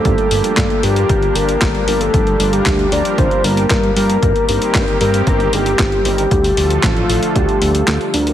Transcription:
<<
  \new Staff \with { instrumentName = "Soft synth lead" } { \time 4/4 \key g \minor \tempo 4 = 115 a'8. a'8. g'4 bes'4 bes'16 a'16~ | a'8. g'8. d''8 c''8 bes'8 bes'8 bes'8~ | bes'8 bes'4 bes'4 g'4 g'8 | g'4 f'4 g'4. r8 | }
  \new Staff \with { instrumentName = "Analog polysynth" } { \time 4/4 \key g \minor <g bes d' f'>8 <g bes d' f'>4 <g d' f' bes'>4 <g d' f' bes'>16 r8. <g d' f' bes'>16 r16 | r8 <g d' f' bes'>4 <g d' f' bes'>4 <g d' f' bes'>16 r8. <g d' f' bes'>16 r16 | r8 <g c' ees' bes'>4 <g c' ees' bes'>4 <g c' ees' bes'>16 r8. <g c' ees' bes'>16 r16 | r8 <f a d' a'>4 <f a d' a'>4 <f a d' a'>16 <f a d' a'>8. <g d' f' bes'>8 | }
  \new Staff \with { instrumentName = "Analog synth pad" } { \time 4/4 \key g \minor << { <f bes d' g'>1~ | <f bes d' g'>1 | <ees bes c' g'>1 | <d a f' a'>1 | } \\ { g1~ | g1~ | g1 | f1 | } >> }
  \new Staff \with { instrumentName = "Analog synth bass" } { \clef bass \time 4/4 \key g \minor g,,8 g,,8 g,8 g,8 g,,8 g,,8 g,,8 g,,8 | g,,8 g,,8 d,8 d,8 g,,8 g,,8 g,8 g,8 | g,,8 g,,8 g,8 g,8 g,,8 g,,8 g,,8 g,,8 | d,8 d,8 a,,8 a,,8 d,8 d,8 d,8 d,8 | }
  \new DrumStaff \with { instrumentName = "Drums" } \drummode { \time 4/4 <hh bd>16 hh16 hho16 hh16 <hc hh bd sn>16 hh16 hho16 hh16 <hh bd>16 hh16 hho16 hh16 <hc hh bd sn>16 hh16 hho16 hh16 | <hh bd>16 hh16 hho16 hh16 <hc hh bd sn>16 hh16 hho16 hh16 <hh bd>16 hh16 hho16 hh16 <hc hh bd sn>16 hh16 hho16 hh16 | <hh bd>16 hh16 hho16 hh16 <hc hh bd sn>16 hh16 hho16 hh16 <hh bd>16 hh16 hho16 hh16 <hc hh bd sn>16 hh16 hho16 hh16 | <hh bd>16 hho16 hho16 hh16 <hc hh bd sn>16 hh16 hho16 hh16 <hh bd>16 hh16 hho16 hh16 <hc hh sn>16 hh16 hho16 hh16 | }
>>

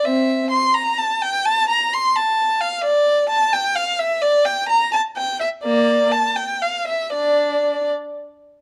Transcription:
\new Staff \with { instrumentName = "Violin" } { \time 6/8 \key a \phrygian \tempo 4. = 85 <c' e''>4 c'''8 bes''8 a''8 g''8 | a''8 bes''8 c'''8 a''4 f''8 | \key d \minor d''4 a''8 g''8 f''8 e''8 | d''8 g''8 bes''8 a''8 g''8 e''8 |
<bes d''>4 a''8 g''8 f''8 e''8 | <d' d''>4. r4. | }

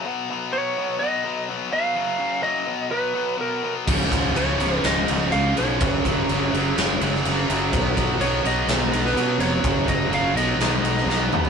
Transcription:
<<
  \new Staff \with { instrumentName = "Lead electric guitar" } { \time 4/4 \key ces \lydian \tempo 4 = 125 r4 des''4 ees''4 r8 f''8~ | f''4 ees''4 ces''4 bes'8. r16 | r4 des''4 ees''4 f''8 des''8~ | des''4 r2. |
r4 des''8 ees''4~ ees''16 ces''8. des''8~ | des''8 ees''8 f''8 ees''2 r8 | }
  \new Staff \with { instrumentName = "Distorted electric guitar" } { \clef bass \time 4/4 \key ces \lydian <ces ges ces'>8 <ces ges ces'>8 <ces ges ces'>8 <ces ges ces'>8 <ces ges ces'>8 <ces ges ces'>8 <ces ges ces'>8 <ces ges ces'>8 | <ges, des ges>8 <ges, des ges>8 <ges, des ges>8 <ces ges ces'>8 <ces ges ces'>8 <ces ges ces'>8 <ces ges ces'>8 <ces ges ces'>8 | <des, aes, des>8 <des, aes, des>8 <des, aes, des>8 <des, aes, des>8 <des, aes, des>8 <des, aes, des>8 <des, aes, des>8 <des, aes, des>8 | <ges, des ges>8 <ges, des ges>8 <ges, des ges>8 <ges, des ges>8 <ges, des ges>8 <ges, des ges>8 <ges, des ges>8 <ges, des ges>8 |
<ces ges ces'>8 <ces ges ces'>8 <ces ges ces'>8 <ces ges ces'>8 <ces ges ces'>8 <ces ges ces'>8 <ces ges ces'>8 <ces ges ces'>8 | <ges, des ges>8 <ges, des ges>8 <ges, des ges>8 <ces ges ces'>8 <ces ges ces'>8 <ces ges ces'>8 <ces ges ces'>8 <ces ges ces'>8 | }
  \new Staff \with { instrumentName = "Overdriven electric guitar" } { \clef bass \time 4/4 \key ces \lydian r1 | r1 | <des, aes, des>8 <des, aes, des>8 <des, aes, des>8 <des, aes, des>8 <des, aes, des>8 <des, aes, des>8 <des, aes, des>8 <des, aes, des>8 | <ges, des ges>8 <ges, des ges>8 <ges, des ges>8 <ges, des ges>8 <ges, des ges>8 <ges, des ges>8 <ges, des ges>8 <ges, des ges>8 |
<ces ges ces'>8 <ces ges ces'>8 <ces ges ces'>8 <ces ges ces'>8 <ces ges ces'>8 <ces ges ces'>8 <ces ges ces'>8 <ces ges ces'>8 | <ges, des ges>8 <ges, des ges>8 <ges, des ges>8 <ces ges ces'>8 <ces ges ces'>8 <ces ges ces'>8 <ces ges ces'>8 <ces ges ces'>8 | }
  \new Staff \with { instrumentName = "Fingered electric bass" } { \clef bass \time 4/4 \key ces \lydian r1 | r1 | des,,8 des,,8 des,,8 des,,8 des,,8 des,,8 des,8 ces,8 | ges,,8 ges,,8 ges,,8 ges,,8 ges,,8 ges,,8 ges,,8 ges,,8 |
ces,8 ces,8 ces,8 ces,8 ces,8 ces,8 ces8 f,,8 | ges,,8 ges,,8 ges,,8 ces,8 ces,8 ces,8 ces,8 ees,8 | }
  \new DrumStaff \with { instrumentName = "Drums" } \drummode { \time 4/4 r4 r4 r4 r4 | r4 r4 r4 r4 | <cymc bd>8 <bd cymr>8 cymr8 cymr8 <cymr sn>8 cymr8 cymr8 cymr8 | <bd cymr>8 <bd cymr>8 cymr8 cymr8 <cymr sn>8 cymr16 sn16 cymr8 cymr8 |
<bd cymr>8 <bd cymr>8 cymr8 cymr8 <cymr sn>8 cymr16 sn16 cymr8 cymr8 | <bd cymr>8 <bd cymr>8 cymr8 cymr8 <cymr sn>8 cymr16 sn16 sn8 toml16 tomfh16 | }
>>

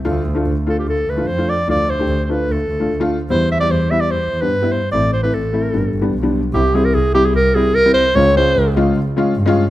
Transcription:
<<
  \new Staff \with { instrumentName = "Clarinet" } { \time 4/4 \tempo 4 = 148 r4. a'16 g'16 a'8 b'8 c''8 d''8 | d''8 c''8.~ c''32 c''32 b'8 a'4. r8 | c''8 e''16 d''16 c''8 e''16 d''16 c''8. b'8. c''8 | d''8 c''16 b'16 a'2 r4 |
g'8 aes'16 bes'16 aes'8 g'16 aes'16 bes'8 aes'8 bes'8 c''8 | des''8 c''4 r2 r8 | }
  \new Staff \with { instrumentName = "Upright piano" } { \time 4/4 <a d' f'>8 r16 <a d' f'>16 r8 <a d' f'>8 r8. <a d' f'>16 r16 <a d' f'>16 r8 | <a d' f'>8 r16 <a d' g'>16 r8 <a d' f'>8 r8. <a d' f'>16 r16 <a d' f'>16 r8 | <g b e'>8 r16 <g b e'>16 r8 <g b e'>8 r8. <g b d'>16 r16 <g b e'>16 r8 | <a c' e'>8 r16 <a c' e'>16 r8 <a c' e'>8 <g b d'>8 r16 <g b d'>16 r16 <g b d'>16 r8 |
<g c' e'>16 r16 <g c' e'>8 r8 <g c' e'>8 r8 <g c' e'>8 r16 <g c' e'>16 r8 | <aes des' f'>16 r16 <aes des' f'>8 r8 <aes des' f'>8 r8 <aes des' f'>8 r16 <aes des' f'>16 r8 | }
  \new Staff \with { instrumentName = "Double bass" } { \clef bass \time 4/4 d,4 d,8 r8 d,8 d,8 f,4 | d,4 d,8 r8 d,8 d,8 d,4 | e,4 e,8 r8 e,8 e,8 g,4 | a,,4 a,,8 r8 g,,8 g,,8 b,,4 |
c,4 c,4 c,8 r8 c,4 | des,4 des,4 des,8 r8 g,4 | }
>>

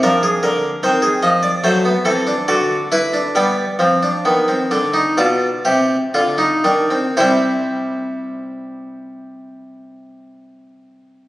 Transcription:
<<
  \new Staff \with { instrumentName = "Harpsichord" } { \time 4/4 \key g \phrygian \tempo 4 = 64 << { bes'16 aes'16 bes'8 c''16 aes'16 ees''16 d''16 c''8 a'8 d''8 b'8 | d''2 d''2 | <g c' c''>1 | } \\ { d'4 c'4 a16 b16 c'16 d'16 fis'8 e'16 d'16 | b8 c'16 d'16 b16 c'16 d'16 ees'16 f'8 g'8 f'16 ees'16 d'16 c'16 | e'1 | } >> }
  \new Staff \with { instrumentName = "Harpsichord" } { \clef bass \time 4/4 \key g \phrygian f8 d8 ees8 f8 fis8 e8 d4 | g8 f8 ees8 d8 b,8 c8 d8 ees8 | c1 | }
>>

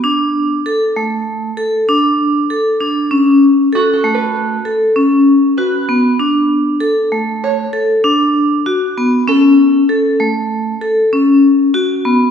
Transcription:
<<
  \new Staff \with { instrumentName = "Five-string banjo" } { \time 5/4 \key a \mixolydian \tempo 4 = 97 r1 r4 | r4 fis'16 a'16 b'4. r4 b'4~ | b'8 r4. cis''4. r4. | a'4. r2. r8 | }
  \new Staff \with { instrumentName = "Vibraphone" } { \time 5/4 \key a \mixolydian d'4 a'8 a4 a'8 d'4 a'8 d'8 | cis'4 a'8 a4 a'8 cis'4 fis'8 b8 | d'4 a'8 a4 a'8 d'4 fis'8 b8 | cis'4 a'8 a4 a'8 cis'4 fis'8 b8 | }
>>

